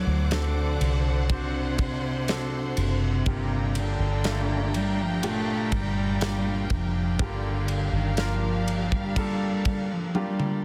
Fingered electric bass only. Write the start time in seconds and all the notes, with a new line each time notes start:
0.07 D2
0.81 C2
2.77 F#1
3.26 G1
4.00 G1
5.72 G1
6.70 F1
7.20 G1
7.93 G1